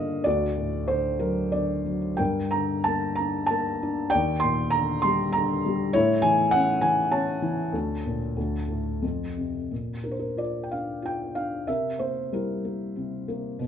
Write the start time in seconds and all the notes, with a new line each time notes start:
Already playing: G2 D3 A#3 F4 A#4 D#5 F5
0.24 D2 F#4 D5
0.57 A2
0.88 D3 C5
1.20 F#3 A#4
1.52 D3 D5
1.86 F#3
2.17 G2 A#4 G5
2.51 D3 A#5
2.84 A#3 A5
3.16 D4 A#5
3.46 A#3 A5
3.83 D4
4.10 D5 G5
4.14 D#2
4.40 A#2 C6
4.70 D3 A#5
5.02 G3 C6
5.32 D3 A#5
5.66 G3
5.93 A2 E4 C#5
6.22 E3 G#5
6.51 C#4 F#5
6.81 E3 G#5
7.12 C#4 C#5 A5
7.42 E3
7.73 D2
8.06 A#2
8.37 D2
8.68 A2
9.02 F2
9.37 C3
9.71 A#2
10.04 D4 A#4
10.11 C5
10.19 A#4
10.37 F4 D5
10.63 G5
10.71 D4 F5
11.02 F4 G5
11.35 D4 F5
11.67 C3 A#4 E5
11.99 A#3 C5
12.32 G3 E4 A#4
12.65 A#3
12.96 C3
13.28 A#3
13.59 B2